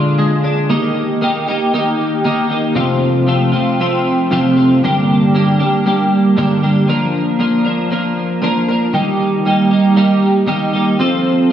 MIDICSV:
0, 0, Header, 1, 2, 480
1, 0, Start_track
1, 0, Tempo, 514580
1, 655, Time_signature, 4, 2, 24, 8
1, 10750, End_track
2, 0, Start_track
2, 0, Title_t, "Clean electric guitar"
2, 0, Program_c, 0, 27
2, 0, Note_on_c, 0, 50, 65
2, 0, Note_on_c, 0, 56, 68
2, 0, Note_on_c, 0, 62, 70
2, 0, Note_on_c, 0, 65, 70
2, 161, Note_off_c, 0, 56, 0
2, 172, Note_on_c, 0, 56, 71
2, 401, Note_off_c, 0, 62, 0
2, 413, Note_on_c, 0, 62, 66
2, 646, Note_off_c, 0, 50, 0
2, 649, Note_on_c, 0, 51, 95
2, 650, Note_off_c, 0, 56, 0
2, 653, Note_on_c, 0, 58, 97
2, 654, Note_off_c, 0, 62, 0
2, 656, Note_off_c, 0, 65, 0
2, 662, Note_on_c, 0, 63, 99
2, 666, Note_on_c, 0, 67, 93
2, 1121, Note_off_c, 0, 51, 0
2, 1127, Note_off_c, 0, 58, 0
2, 1131, Note_off_c, 0, 63, 0
2, 1132, Note_on_c, 0, 51, 72
2, 1138, Note_on_c, 0, 58, 82
2, 1142, Note_on_c, 0, 63, 80
2, 1143, Note_off_c, 0, 67, 0
2, 1154, Note_on_c, 0, 67, 82
2, 1369, Note_off_c, 0, 67, 0
2, 1376, Note_off_c, 0, 63, 0
2, 1380, Note_on_c, 0, 67, 82
2, 1387, Note_off_c, 0, 58, 0
2, 1387, Note_on_c, 0, 63, 67
2, 1399, Note_on_c, 0, 58, 68
2, 1607, Note_off_c, 0, 51, 0
2, 1611, Note_off_c, 0, 58, 0
2, 1618, Note_on_c, 0, 51, 79
2, 1620, Note_off_c, 0, 63, 0
2, 1622, Note_off_c, 0, 67, 0
2, 1623, Note_on_c, 0, 58, 81
2, 1631, Note_on_c, 0, 63, 71
2, 1634, Note_on_c, 0, 67, 93
2, 2083, Note_off_c, 0, 51, 0
2, 2089, Note_off_c, 0, 58, 0
2, 2094, Note_on_c, 0, 51, 105
2, 2100, Note_off_c, 0, 63, 0
2, 2100, Note_on_c, 0, 58, 96
2, 2107, Note_off_c, 0, 67, 0
2, 2111, Note_on_c, 0, 63, 90
2, 2118, Note_on_c, 0, 67, 96
2, 2318, Note_off_c, 0, 67, 0
2, 2329, Note_on_c, 0, 67, 76
2, 2331, Note_off_c, 0, 63, 0
2, 2336, Note_off_c, 0, 58, 0
2, 2342, Note_on_c, 0, 63, 68
2, 2348, Note_on_c, 0, 58, 65
2, 2558, Note_off_c, 0, 67, 0
2, 2561, Note_off_c, 0, 51, 0
2, 2563, Note_on_c, 0, 41, 93
2, 2565, Note_off_c, 0, 63, 0
2, 2565, Note_on_c, 0, 48, 107
2, 2568, Note_off_c, 0, 58, 0
2, 2570, Note_on_c, 0, 53, 112
2, 2574, Note_on_c, 0, 57, 104
2, 2580, Note_on_c, 0, 60, 106
2, 2580, Note_on_c, 0, 65, 110
2, 3035, Note_off_c, 0, 53, 0
2, 3044, Note_off_c, 0, 57, 0
2, 3046, Note_on_c, 0, 53, 85
2, 3050, Note_off_c, 0, 60, 0
2, 3056, Note_off_c, 0, 65, 0
2, 3056, Note_on_c, 0, 57, 89
2, 3061, Note_on_c, 0, 60, 90
2, 3067, Note_on_c, 0, 65, 94
2, 3273, Note_off_c, 0, 65, 0
2, 3282, Note_off_c, 0, 60, 0
2, 3284, Note_on_c, 0, 65, 85
2, 3290, Note_off_c, 0, 41, 0
2, 3290, Note_off_c, 0, 57, 0
2, 3291, Note_off_c, 0, 48, 0
2, 3293, Note_on_c, 0, 60, 75
2, 3297, Note_off_c, 0, 53, 0
2, 3301, Note_on_c, 0, 57, 60
2, 3309, Note_on_c, 0, 53, 68
2, 3533, Note_off_c, 0, 53, 0
2, 3538, Note_off_c, 0, 57, 0
2, 3543, Note_off_c, 0, 60, 0
2, 3544, Note_on_c, 0, 53, 68
2, 3548, Note_off_c, 0, 65, 0
2, 3550, Note_on_c, 0, 57, 73
2, 3554, Note_on_c, 0, 60, 91
2, 3559, Note_on_c, 0, 65, 83
2, 4016, Note_off_c, 0, 53, 0
2, 4017, Note_on_c, 0, 41, 89
2, 4019, Note_off_c, 0, 57, 0
2, 4023, Note_on_c, 0, 48, 100
2, 4025, Note_off_c, 0, 60, 0
2, 4025, Note_off_c, 0, 65, 0
2, 4027, Note_on_c, 0, 53, 100
2, 4030, Note_on_c, 0, 57, 100
2, 4036, Note_on_c, 0, 60, 104
2, 4036, Note_on_c, 0, 65, 118
2, 4249, Note_off_c, 0, 65, 0
2, 4255, Note_off_c, 0, 60, 0
2, 4261, Note_on_c, 0, 65, 87
2, 4262, Note_off_c, 0, 57, 0
2, 4266, Note_on_c, 0, 60, 72
2, 4268, Note_off_c, 0, 53, 0
2, 4273, Note_on_c, 0, 57, 68
2, 4279, Note_on_c, 0, 53, 59
2, 4483, Note_off_c, 0, 41, 0
2, 4484, Note_off_c, 0, 65, 0
2, 4485, Note_off_c, 0, 48, 0
2, 4487, Note_off_c, 0, 60, 0
2, 4490, Note_off_c, 0, 57, 0
2, 4494, Note_off_c, 0, 53, 0
2, 4506, Note_on_c, 0, 43, 98
2, 4513, Note_on_c, 0, 55, 107
2, 4514, Note_on_c, 0, 50, 101
2, 4517, Note_on_c, 0, 58, 113
2, 4522, Note_on_c, 0, 62, 109
2, 4527, Note_on_c, 0, 67, 121
2, 4973, Note_off_c, 0, 55, 0
2, 4984, Note_off_c, 0, 58, 0
2, 4984, Note_on_c, 0, 55, 78
2, 4988, Note_on_c, 0, 58, 81
2, 4992, Note_off_c, 0, 62, 0
2, 4994, Note_off_c, 0, 67, 0
2, 4995, Note_on_c, 0, 62, 80
2, 5005, Note_on_c, 0, 67, 82
2, 5205, Note_off_c, 0, 67, 0
2, 5217, Note_on_c, 0, 67, 72
2, 5220, Note_off_c, 0, 62, 0
2, 5221, Note_off_c, 0, 43, 0
2, 5221, Note_off_c, 0, 55, 0
2, 5224, Note_on_c, 0, 62, 72
2, 5225, Note_off_c, 0, 50, 0
2, 5228, Note_off_c, 0, 58, 0
2, 5232, Note_on_c, 0, 55, 67
2, 5232, Note_on_c, 0, 58, 67
2, 5454, Note_off_c, 0, 55, 0
2, 5463, Note_off_c, 0, 58, 0
2, 5465, Note_on_c, 0, 55, 86
2, 5467, Note_off_c, 0, 62, 0
2, 5467, Note_on_c, 0, 58, 80
2, 5468, Note_off_c, 0, 67, 0
2, 5478, Note_on_c, 0, 62, 75
2, 5479, Note_on_c, 0, 67, 89
2, 5936, Note_off_c, 0, 55, 0
2, 5938, Note_off_c, 0, 62, 0
2, 5939, Note_on_c, 0, 43, 92
2, 5943, Note_on_c, 0, 50, 98
2, 5946, Note_off_c, 0, 67, 0
2, 5947, Note_off_c, 0, 58, 0
2, 5948, Note_on_c, 0, 55, 104
2, 5949, Note_on_c, 0, 62, 101
2, 5951, Note_on_c, 0, 58, 106
2, 5957, Note_on_c, 0, 67, 105
2, 6171, Note_off_c, 0, 67, 0
2, 6176, Note_off_c, 0, 62, 0
2, 6183, Note_on_c, 0, 67, 83
2, 6186, Note_off_c, 0, 55, 0
2, 6187, Note_on_c, 0, 62, 79
2, 6189, Note_off_c, 0, 58, 0
2, 6192, Note_on_c, 0, 58, 78
2, 6197, Note_on_c, 0, 55, 65
2, 6403, Note_off_c, 0, 43, 0
2, 6405, Note_off_c, 0, 50, 0
2, 6405, Note_off_c, 0, 67, 0
2, 6407, Note_off_c, 0, 62, 0
2, 6410, Note_off_c, 0, 55, 0
2, 6413, Note_on_c, 0, 53, 103
2, 6422, Note_off_c, 0, 58, 0
2, 6426, Note_on_c, 0, 58, 94
2, 6430, Note_on_c, 0, 62, 105
2, 6434, Note_on_c, 0, 70, 122
2, 6882, Note_off_c, 0, 53, 0
2, 6894, Note_off_c, 0, 62, 0
2, 6894, Note_on_c, 0, 53, 80
2, 6897, Note_off_c, 0, 58, 0
2, 6901, Note_on_c, 0, 58, 94
2, 6905, Note_on_c, 0, 62, 82
2, 6908, Note_off_c, 0, 70, 0
2, 6912, Note_on_c, 0, 70, 85
2, 7128, Note_off_c, 0, 70, 0
2, 7132, Note_off_c, 0, 62, 0
2, 7132, Note_on_c, 0, 70, 78
2, 7143, Note_on_c, 0, 62, 69
2, 7146, Note_off_c, 0, 58, 0
2, 7150, Note_on_c, 0, 58, 61
2, 7363, Note_off_c, 0, 53, 0
2, 7373, Note_off_c, 0, 58, 0
2, 7375, Note_on_c, 0, 53, 76
2, 7378, Note_off_c, 0, 62, 0
2, 7385, Note_on_c, 0, 58, 82
2, 7386, Note_off_c, 0, 70, 0
2, 7390, Note_on_c, 0, 62, 72
2, 7397, Note_on_c, 0, 70, 84
2, 7841, Note_off_c, 0, 53, 0
2, 7848, Note_off_c, 0, 58, 0
2, 7852, Note_on_c, 0, 53, 91
2, 7855, Note_off_c, 0, 62, 0
2, 7859, Note_on_c, 0, 58, 89
2, 7861, Note_off_c, 0, 70, 0
2, 7867, Note_on_c, 0, 62, 96
2, 7872, Note_on_c, 0, 70, 114
2, 8090, Note_off_c, 0, 70, 0
2, 8101, Note_on_c, 0, 70, 82
2, 8105, Note_off_c, 0, 62, 0
2, 8110, Note_off_c, 0, 58, 0
2, 8116, Note_on_c, 0, 62, 66
2, 8121, Note_on_c, 0, 58, 61
2, 8319, Note_off_c, 0, 53, 0
2, 8324, Note_off_c, 0, 70, 0
2, 8328, Note_off_c, 0, 58, 0
2, 8330, Note_on_c, 0, 51, 102
2, 8331, Note_off_c, 0, 62, 0
2, 8338, Note_on_c, 0, 55, 102
2, 8339, Note_on_c, 0, 58, 94
2, 8344, Note_on_c, 0, 63, 103
2, 8345, Note_on_c, 0, 67, 113
2, 8808, Note_off_c, 0, 55, 0
2, 8814, Note_off_c, 0, 58, 0
2, 8819, Note_on_c, 0, 55, 75
2, 8820, Note_off_c, 0, 63, 0
2, 8825, Note_on_c, 0, 58, 80
2, 8827, Note_off_c, 0, 67, 0
2, 8831, Note_on_c, 0, 63, 82
2, 8838, Note_on_c, 0, 67, 84
2, 9046, Note_off_c, 0, 67, 0
2, 9049, Note_off_c, 0, 63, 0
2, 9052, Note_off_c, 0, 51, 0
2, 9057, Note_on_c, 0, 67, 68
2, 9061, Note_on_c, 0, 63, 66
2, 9063, Note_off_c, 0, 58, 0
2, 9075, Note_on_c, 0, 58, 63
2, 9282, Note_off_c, 0, 55, 0
2, 9289, Note_off_c, 0, 58, 0
2, 9290, Note_off_c, 0, 63, 0
2, 9293, Note_on_c, 0, 55, 81
2, 9299, Note_off_c, 0, 67, 0
2, 9300, Note_on_c, 0, 58, 88
2, 9302, Note_on_c, 0, 63, 83
2, 9310, Note_on_c, 0, 67, 86
2, 9760, Note_off_c, 0, 55, 0
2, 9760, Note_off_c, 0, 58, 0
2, 9762, Note_on_c, 0, 51, 94
2, 9769, Note_off_c, 0, 63, 0
2, 9771, Note_on_c, 0, 55, 104
2, 9772, Note_off_c, 0, 67, 0
2, 9772, Note_on_c, 0, 58, 104
2, 9780, Note_on_c, 0, 63, 109
2, 9783, Note_on_c, 0, 67, 100
2, 10000, Note_off_c, 0, 67, 0
2, 10012, Note_on_c, 0, 67, 86
2, 10013, Note_off_c, 0, 63, 0
2, 10020, Note_off_c, 0, 58, 0
2, 10024, Note_on_c, 0, 63, 77
2, 10031, Note_on_c, 0, 58, 60
2, 10232, Note_off_c, 0, 51, 0
2, 10237, Note_off_c, 0, 55, 0
2, 10237, Note_off_c, 0, 67, 0
2, 10243, Note_off_c, 0, 63, 0
2, 10247, Note_off_c, 0, 58, 0
2, 10250, Note_on_c, 0, 53, 97
2, 10258, Note_on_c, 0, 60, 109
2, 10264, Note_on_c, 0, 65, 102
2, 10269, Note_on_c, 0, 69, 102
2, 10717, Note_off_c, 0, 53, 0
2, 10723, Note_off_c, 0, 60, 0
2, 10727, Note_off_c, 0, 65, 0
2, 10735, Note_off_c, 0, 69, 0
2, 10750, End_track
0, 0, End_of_file